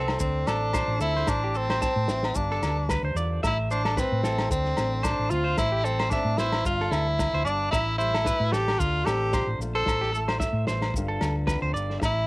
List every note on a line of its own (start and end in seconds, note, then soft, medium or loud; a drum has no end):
0.00 0.15 C2 medium
0.00 0.20 A2 medium
0.00 0.18 E3 medium
0.00 0.17 A3 medium
0.00 0.17 C4 medium
0.00 0.19 C4 medium
0.00 0.21 E4 medium
0.00 0.19 A4 medium
0.08 snare medium
0.08 low agogo medium
0.19 0.43 D2 medium
0.19 1.27 D3 medium
0.19 0.49 C4 medium
0.19 kick medium
0.19 maracas loud
0.47 0.82 A1 medium
0.47 0.99 C4 medium
0.47 1.01 D4 loud
0.47 0.73 A4 medium
0.47 snare medium
0.47 low agogo medium
0.47 maracas medium
0.73 1.25 F4 medium
0.73 1.00 C5 medium
0.73 kick medium
0.73 snare medium
0.73 low agogo medium
0.73 maracas medium
0.88 0.98 A1 medium
1.00 1.23 D2 medium
1.00 1.24 A3 medium
1.00 1.25 C4 medium
1.00 1.31 E4 medium
1.00 1.15 A4 medium
1.00 maracas medium
1.17 1.42 C5 medium
1.17 snare soft
1.27 1.85 A1 medium
1.27 2.35 A2 medium
1.27 1.59 D4 medium
1.27 kick medium
1.27 snare medium
1.27 low agogo medium
1.27 maracas loud
1.44 1.55 G4 medium
1.55 2.38 C4 medium
1.55 1.69 A4 medium
1.55 maracas medium
1.70 1.81 C5 medium
1.70 snare medium
1.70 low agogo medium
1.82 2.33 C4 medium
1.82 2.07 A5 medium
1.82 kick medium
1.82 snare medium
1.82 maracas medium
1.96 2.06 A2 medium
2.07 2.30 A1 medium
2.07 2.32 E3 medium
2.07 2.36 E4 medium
2.07 snare medium
2.07 maracas medium
2.23 snare medium
2.23 low agogo medium
2.35 2.58 G1 loud
2.35 3.40 G2 medium
2.35 2.90 D4 medium
2.35 kick medium
2.35 maracas loud
2.51 2.76 A4 medium
2.51 snare soft
2.62 2.97 D2 medium
2.62 3.40 B3 medium
2.62 snare medium
2.62 low agogo medium
2.62 maracas medium
2.89 3.40 D4 medium
2.89 3.04 B4 medium
2.89 kick medium
2.89 snare medium
2.89 low agogo medium
2.89 maracas loud
3.03 3.13 D2 medium
3.03 3.16 C5 medium
3.15 3.38 E2 medium
3.15 3.42 D3 medium
3.15 3.40 F4 medium
3.15 3.42 D5 medium
3.15 maracas medium
3.43 4.00 A1 loud
3.43 4.51 A2 medium
3.43 3.58 E4 medium
3.43 3.69 E5 medium
3.43 kick medium
3.43 snare medium
3.43 low agogo medium
3.43 maracas medium
3.69 4.47 A3 medium
3.69 4.01 D4 medium
3.69 3.84 C5 medium
3.69 maracas medium
3.85 3.96 A4 medium
3.85 snare medium
3.85 low agogo medium
3.97 4.48 C4 medium
3.97 4.51 C4 medium
3.97 4.22 B4 medium
3.97 kick medium
3.97 snare medium
3.97 maracas medium
4.12 4.22 A2 loud
4.23 4.47 A1 medium
4.23 4.47 E3 medium
4.23 4.51 E4 medium
4.23 4.49 A4 medium
4.23 snare medium
4.23 maracas medium
4.38 snare medium
4.38 low agogo medium
4.50 4.73 D2 loud
4.50 5.58 D3 medium
4.50 5.05 C4 medium
4.50 kick medium
4.50 maracas medium
4.65 snare soft
4.77 5.13 A1 medium
4.77 5.31 C4 medium
4.77 snare medium
4.77 low agogo medium
4.77 maracas medium
5.03 5.32 D4 medium
5.03 5.29 C5 medium
5.03 kick medium
5.03 snare medium
5.03 low agogo medium
5.03 maracas medium
5.19 5.29 A1 medium
5.30 5.54 D2 medium
5.30 5.55 A3 medium
5.30 5.55 C4 medium
5.30 5.57 F4 medium
5.30 5.45 F4 medium
5.30 maracas medium
5.44 5.70 C5 medium
5.57 6.15 A1 medium
5.57 6.66 A2 medium
5.57 5.86 E4 loud
5.57 kick medium
5.57 snare medium
5.57 low agogo medium
5.57 maracas medium
5.72 5.84 G4 medium
5.84 6.01 G3 medium
5.84 6.12 C4 medium
5.84 5.98 A4 medium
5.84 maracas medium
5.99 6.66 A3 medium
5.99 6.11 C5 medium
5.99 snare medium
5.99 low agogo medium
6.10 6.38 C4 medium
6.10 6.40 D4 medium
6.10 6.38 E5 medium
6.10 kick medium
6.10 snare medium
6.10 maracas medium
6.25 6.36 A2 medium
6.38 6.61 A1 medium
6.38 6.63 E3 medium
6.38 6.63 C4 medium
6.38 6.65 E4 medium
6.38 6.65 C5 medium
6.38 snare medium
6.38 maracas medium
6.52 snare medium
6.52 low agogo medium
6.65 6.88 G1 medium
6.65 7.19 G2 medium
6.65 6.93 F4 medium
6.65 kick medium
6.65 maracas medium
6.80 7.06 A4 medium
6.80 snare soft
6.91 7.27 D2 medium
6.91 7.70 B3 medium
6.91 7.44 E4 loud
6.91 snare medium
6.91 low agogo medium
6.91 maracas medium
7.19 7.46 F2 medium
7.19 muted clean electric guitar stroke medium
7.19 kick medium
7.19 snare medium
7.19 low agogo medium
7.19 maracas medium
7.33 7.44 D2 medium
7.33 7.46 C5 medium
7.44 7.67 G1 medium
7.44 7.73 G2 medium
7.44 7.70 D4 medium
7.44 7.72 D5 medium
7.44 maracas medium
7.71 8.30 A1 loud
7.71 8.27 A2 medium
7.71 7.97 E4 medium
7.71 7.98 E5 medium
7.71 kick medium
7.71 snare medium
7.71 low agogo medium
7.71 maracas medium
7.98 8.16 G3 medium
7.98 8.54 E4 medium
7.98 8.13 C5 medium
7.98 maracas medium
8.14 8.81 A3 medium
8.14 8.26 A4 medium
8.14 snare medium
8.14 low agogo medium
8.25 8.53 B2 medium
8.25 8.52 B4 medium
8.25 kick medium
8.25 snare medium
8.25 maracas medium
8.40 8.51 A2 medium
8.52 8.75 A1 medium
8.52 8.80 C3 medium
8.52 8.80 G4 loud
8.52 8.79 A4 medium
8.52 snare medium
8.52 maracas medium
8.68 snare medium
8.68 low agogo medium
8.79 9.02 D2 medium
8.79 9.88 D3 medium
8.79 9.06 F4 loud
8.79 kick medium
8.79 maracas medium
9.05 9.41 A1 medium
9.05 9.85 C4 medium
9.05 9.47 G4 loud
9.05 9.32 A4 medium
9.05 snare medium
9.05 low agogo medium
9.05 maracas medium
9.33 9.61 F4 medium
9.33 9.59 C5 medium
9.33 kick medium
9.33 snare medium
9.33 low agogo medium
9.33 maracas medium
9.47 9.58 A1 medium
9.59 9.82 A#1 medium
9.59 9.85 A3 medium
9.59 9.85 F4 medium
9.59 maracas medium
9.75 10.25 A4 loud
9.75 10.01 C5 medium
9.86 10.44 A1 medium
9.86 10.95 A2 medium
9.86 kick medium
9.86 snare medium
9.86 low agogo medium
9.86 maracas medium
10.01 10.12 G4 medium
10.01 snare soft
10.13 10.93 A3 medium
10.13 10.27 A4 medium
10.13 maracas medium
10.28 10.39 C5 medium
10.28 snare medium
10.28 low agogo medium
10.40 10.66 E5 medium
10.40 muted nylon-string guitar stroke medium
10.40 kick medium
10.40 snare medium
10.40 maracas medium
10.53 10.64 A2 medium
10.67 10.90 A1 medium
10.67 10.92 E3 medium
10.67 10.95 E4 medium
10.67 10.93 C5 medium
10.67 snare medium
10.67 maracas medium
10.82 snare medium
10.82 low agogo medium
10.94 11.17 G1 medium
10.94 11.49 G2 medium
10.94 12.03 D3 medium
10.94 11.23 B3 medium
10.94 kick medium
10.94 maracas medium
10.98 12.01 D4 medium
10.98 12.01 F4 medium
11.09 11.35 A4 medium
11.21 11.56 D2 medium
11.21 12.00 B3 medium
11.21 snare medium
11.21 low agogo medium
11.21 maracas medium
11.47 11.75 F2 medium
11.47 11.62 B4 medium
11.47 kick medium
11.47 snare medium
11.47 low agogo medium
11.47 maracas medium
11.62 11.73 D2 medium
11.62 11.73 C5 medium
11.74 11.97 G1 medium
11.74 12.02 G2 medium
11.74 11.99 D5 medium
11.74 maracas medium
11.90 snare soft
12.00 12.27 A1 medium
12.00 12.27 A2 medium
12.00 muted clean electric guitar stroke medium
12.00 kick medium
12.00 snare medium
12.00 low agogo medium
12.00 maracas medium
12.05 12.27 E4 medium